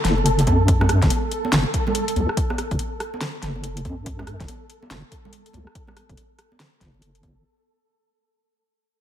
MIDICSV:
0, 0, Header, 1, 4, 480
1, 0, Start_track
1, 0, Key_signature, 3, "minor"
1, 0, Tempo, 422535
1, 772, Time_signature, 4, 2, 24, 8
1, 10232, End_track
2, 0, Start_track
2, 0, Title_t, "Synth texture"
2, 0, Program_c, 0, 99
2, 0, Note_on_c, 0, 69, 84
2, 8469, Note_off_c, 0, 69, 0
2, 10232, End_track
3, 0, Start_track
3, 0, Title_t, "Wobble bass"
3, 0, Program_c, 1, 39
3, 51, Note_on_c, 1, 30, 89
3, 535, Note_on_c, 1, 42, 76
3, 552, Note_off_c, 1, 30, 0
3, 1143, Note_off_c, 1, 42, 0
3, 1163, Note_on_c, 1, 30, 96
3, 1246, Note_off_c, 1, 30, 0
3, 1734, Note_on_c, 1, 30, 90
3, 1870, Note_off_c, 1, 30, 0
3, 2455, Note_on_c, 1, 37, 92
3, 2590, Note_off_c, 1, 37, 0
3, 3082, Note_on_c, 1, 30, 96
3, 3166, Note_off_c, 1, 30, 0
3, 3893, Note_on_c, 1, 30, 91
3, 4374, Note_on_c, 1, 42, 70
3, 4391, Note_off_c, 1, 30, 0
3, 4982, Note_off_c, 1, 42, 0
3, 5002, Note_on_c, 1, 30, 98
3, 5086, Note_off_c, 1, 30, 0
3, 5572, Note_on_c, 1, 30, 87
3, 5709, Note_off_c, 1, 30, 0
3, 6295, Note_on_c, 1, 37, 90
3, 6430, Note_off_c, 1, 37, 0
3, 6922, Note_on_c, 1, 30, 93
3, 7006, Note_off_c, 1, 30, 0
3, 7735, Note_on_c, 1, 30, 94
3, 7967, Note_off_c, 1, 30, 0
3, 7974, Note_on_c, 1, 30, 110
3, 8199, Note_off_c, 1, 30, 0
3, 8216, Note_on_c, 1, 30, 77
3, 8439, Note_off_c, 1, 30, 0
3, 10232, End_track
4, 0, Start_track
4, 0, Title_t, "Drums"
4, 53, Note_on_c, 9, 38, 38
4, 53, Note_on_c, 9, 42, 52
4, 166, Note_off_c, 9, 38, 0
4, 166, Note_off_c, 9, 42, 0
4, 204, Note_on_c, 9, 63, 65
4, 292, Note_on_c, 9, 42, 70
4, 318, Note_off_c, 9, 63, 0
4, 405, Note_off_c, 9, 42, 0
4, 440, Note_on_c, 9, 42, 57
4, 450, Note_on_c, 9, 62, 65
4, 533, Note_off_c, 9, 42, 0
4, 533, Note_on_c, 9, 42, 32
4, 536, Note_on_c, 9, 36, 68
4, 540, Note_on_c, 9, 63, 96
4, 564, Note_off_c, 9, 62, 0
4, 647, Note_off_c, 9, 42, 0
4, 650, Note_off_c, 9, 36, 0
4, 654, Note_off_c, 9, 63, 0
4, 774, Note_on_c, 9, 42, 70
4, 776, Note_on_c, 9, 36, 121
4, 888, Note_off_c, 9, 42, 0
4, 890, Note_off_c, 9, 36, 0
4, 922, Note_on_c, 9, 37, 50
4, 922, Note_on_c, 9, 63, 86
4, 925, Note_on_c, 9, 64, 75
4, 1013, Note_off_c, 9, 37, 0
4, 1013, Note_on_c, 9, 37, 51
4, 1013, Note_on_c, 9, 42, 47
4, 1036, Note_off_c, 9, 63, 0
4, 1038, Note_off_c, 9, 64, 0
4, 1126, Note_off_c, 9, 37, 0
4, 1126, Note_off_c, 9, 42, 0
4, 1162, Note_on_c, 9, 38, 37
4, 1162, Note_on_c, 9, 42, 33
4, 1164, Note_on_c, 9, 36, 98
4, 1254, Note_off_c, 9, 42, 0
4, 1254, Note_on_c, 9, 42, 70
4, 1257, Note_on_c, 9, 63, 61
4, 1276, Note_off_c, 9, 38, 0
4, 1278, Note_off_c, 9, 36, 0
4, 1368, Note_off_c, 9, 42, 0
4, 1370, Note_off_c, 9, 63, 0
4, 1494, Note_on_c, 9, 42, 50
4, 1608, Note_off_c, 9, 42, 0
4, 1644, Note_on_c, 9, 63, 85
4, 1733, Note_on_c, 9, 38, 107
4, 1733, Note_on_c, 9, 42, 64
4, 1757, Note_off_c, 9, 63, 0
4, 1846, Note_off_c, 9, 38, 0
4, 1846, Note_off_c, 9, 42, 0
4, 1975, Note_on_c, 9, 36, 60
4, 1975, Note_on_c, 9, 42, 49
4, 2089, Note_off_c, 9, 36, 0
4, 2089, Note_off_c, 9, 42, 0
4, 2122, Note_on_c, 9, 63, 68
4, 2130, Note_on_c, 9, 64, 85
4, 2213, Note_on_c, 9, 42, 70
4, 2236, Note_off_c, 9, 63, 0
4, 2243, Note_off_c, 9, 64, 0
4, 2327, Note_off_c, 9, 42, 0
4, 2364, Note_on_c, 9, 42, 55
4, 2456, Note_on_c, 9, 63, 81
4, 2457, Note_off_c, 9, 42, 0
4, 2457, Note_on_c, 9, 42, 32
4, 2570, Note_off_c, 9, 63, 0
4, 2571, Note_off_c, 9, 42, 0
4, 2604, Note_on_c, 9, 37, 50
4, 2694, Note_on_c, 9, 36, 110
4, 2695, Note_on_c, 9, 42, 73
4, 2718, Note_off_c, 9, 37, 0
4, 2808, Note_off_c, 9, 36, 0
4, 2809, Note_off_c, 9, 42, 0
4, 2840, Note_on_c, 9, 63, 91
4, 2844, Note_on_c, 9, 37, 48
4, 2935, Note_off_c, 9, 37, 0
4, 2935, Note_on_c, 9, 37, 50
4, 2935, Note_on_c, 9, 42, 49
4, 2954, Note_off_c, 9, 63, 0
4, 3048, Note_off_c, 9, 37, 0
4, 3048, Note_off_c, 9, 42, 0
4, 3082, Note_on_c, 9, 36, 89
4, 3082, Note_on_c, 9, 42, 35
4, 3170, Note_on_c, 9, 63, 57
4, 3171, Note_off_c, 9, 42, 0
4, 3171, Note_on_c, 9, 42, 70
4, 3196, Note_off_c, 9, 36, 0
4, 3283, Note_off_c, 9, 63, 0
4, 3285, Note_off_c, 9, 42, 0
4, 3411, Note_on_c, 9, 37, 61
4, 3411, Note_on_c, 9, 42, 49
4, 3525, Note_off_c, 9, 37, 0
4, 3525, Note_off_c, 9, 42, 0
4, 3564, Note_on_c, 9, 63, 89
4, 3649, Note_on_c, 9, 38, 104
4, 3649, Note_on_c, 9, 42, 72
4, 3677, Note_off_c, 9, 63, 0
4, 3763, Note_off_c, 9, 38, 0
4, 3763, Note_off_c, 9, 42, 0
4, 3891, Note_on_c, 9, 38, 33
4, 3891, Note_on_c, 9, 42, 50
4, 4005, Note_off_c, 9, 38, 0
4, 4005, Note_off_c, 9, 42, 0
4, 4041, Note_on_c, 9, 63, 63
4, 4130, Note_on_c, 9, 42, 75
4, 4154, Note_off_c, 9, 63, 0
4, 4244, Note_off_c, 9, 42, 0
4, 4281, Note_on_c, 9, 42, 61
4, 4374, Note_off_c, 9, 42, 0
4, 4374, Note_on_c, 9, 42, 33
4, 4375, Note_on_c, 9, 36, 59
4, 4376, Note_on_c, 9, 63, 82
4, 4488, Note_off_c, 9, 36, 0
4, 4488, Note_off_c, 9, 42, 0
4, 4490, Note_off_c, 9, 63, 0
4, 4613, Note_on_c, 9, 42, 81
4, 4615, Note_on_c, 9, 36, 106
4, 4727, Note_off_c, 9, 42, 0
4, 4728, Note_off_c, 9, 36, 0
4, 4761, Note_on_c, 9, 37, 46
4, 4763, Note_on_c, 9, 63, 78
4, 4768, Note_on_c, 9, 64, 84
4, 4852, Note_off_c, 9, 37, 0
4, 4852, Note_on_c, 9, 37, 49
4, 4852, Note_on_c, 9, 42, 50
4, 4876, Note_off_c, 9, 63, 0
4, 4881, Note_off_c, 9, 64, 0
4, 4966, Note_off_c, 9, 37, 0
4, 4966, Note_off_c, 9, 42, 0
4, 5003, Note_on_c, 9, 36, 95
4, 5003, Note_on_c, 9, 38, 34
4, 5003, Note_on_c, 9, 42, 37
4, 5094, Note_off_c, 9, 42, 0
4, 5094, Note_on_c, 9, 42, 74
4, 5097, Note_on_c, 9, 63, 61
4, 5116, Note_off_c, 9, 36, 0
4, 5117, Note_off_c, 9, 38, 0
4, 5208, Note_off_c, 9, 42, 0
4, 5211, Note_off_c, 9, 63, 0
4, 5335, Note_on_c, 9, 42, 48
4, 5448, Note_off_c, 9, 42, 0
4, 5482, Note_on_c, 9, 63, 86
4, 5574, Note_on_c, 9, 38, 101
4, 5574, Note_on_c, 9, 42, 73
4, 5595, Note_off_c, 9, 63, 0
4, 5688, Note_off_c, 9, 38, 0
4, 5688, Note_off_c, 9, 42, 0
4, 5813, Note_on_c, 9, 42, 51
4, 5815, Note_on_c, 9, 36, 52
4, 5927, Note_off_c, 9, 42, 0
4, 5928, Note_off_c, 9, 36, 0
4, 5966, Note_on_c, 9, 63, 56
4, 5966, Note_on_c, 9, 64, 84
4, 6052, Note_on_c, 9, 42, 72
4, 6080, Note_off_c, 9, 63, 0
4, 6080, Note_off_c, 9, 64, 0
4, 6165, Note_off_c, 9, 42, 0
4, 6202, Note_on_c, 9, 42, 60
4, 6286, Note_on_c, 9, 63, 81
4, 6295, Note_off_c, 9, 42, 0
4, 6295, Note_on_c, 9, 42, 34
4, 6400, Note_off_c, 9, 63, 0
4, 6409, Note_off_c, 9, 42, 0
4, 6442, Note_on_c, 9, 37, 48
4, 6535, Note_on_c, 9, 36, 108
4, 6535, Note_on_c, 9, 42, 80
4, 6556, Note_off_c, 9, 37, 0
4, 6648, Note_off_c, 9, 36, 0
4, 6649, Note_off_c, 9, 42, 0
4, 6674, Note_on_c, 9, 63, 82
4, 6682, Note_on_c, 9, 64, 78
4, 6685, Note_on_c, 9, 37, 44
4, 6777, Note_off_c, 9, 37, 0
4, 6777, Note_on_c, 9, 37, 46
4, 6777, Note_on_c, 9, 42, 48
4, 6787, Note_off_c, 9, 63, 0
4, 6796, Note_off_c, 9, 64, 0
4, 6891, Note_off_c, 9, 37, 0
4, 6891, Note_off_c, 9, 42, 0
4, 6923, Note_on_c, 9, 36, 88
4, 6924, Note_on_c, 9, 42, 35
4, 7014, Note_off_c, 9, 42, 0
4, 7014, Note_on_c, 9, 42, 78
4, 7016, Note_on_c, 9, 63, 56
4, 7037, Note_off_c, 9, 36, 0
4, 7128, Note_off_c, 9, 42, 0
4, 7130, Note_off_c, 9, 63, 0
4, 7254, Note_on_c, 9, 37, 53
4, 7254, Note_on_c, 9, 42, 52
4, 7368, Note_off_c, 9, 37, 0
4, 7368, Note_off_c, 9, 42, 0
4, 7404, Note_on_c, 9, 63, 78
4, 7496, Note_on_c, 9, 38, 105
4, 7496, Note_on_c, 9, 42, 76
4, 7518, Note_off_c, 9, 63, 0
4, 7609, Note_off_c, 9, 38, 0
4, 7609, Note_off_c, 9, 42, 0
4, 7736, Note_on_c, 9, 36, 55
4, 7738, Note_on_c, 9, 38, 35
4, 7738, Note_on_c, 9, 42, 51
4, 7850, Note_off_c, 9, 36, 0
4, 7851, Note_off_c, 9, 38, 0
4, 7851, Note_off_c, 9, 42, 0
4, 7888, Note_on_c, 9, 63, 58
4, 7975, Note_on_c, 9, 42, 77
4, 8002, Note_off_c, 9, 63, 0
4, 8088, Note_off_c, 9, 42, 0
4, 8123, Note_on_c, 9, 42, 61
4, 8215, Note_off_c, 9, 42, 0
4, 8215, Note_on_c, 9, 42, 35
4, 8215, Note_on_c, 9, 63, 82
4, 8216, Note_on_c, 9, 36, 60
4, 8329, Note_off_c, 9, 42, 0
4, 8329, Note_off_c, 9, 63, 0
4, 8330, Note_off_c, 9, 36, 0
4, 10232, End_track
0, 0, End_of_file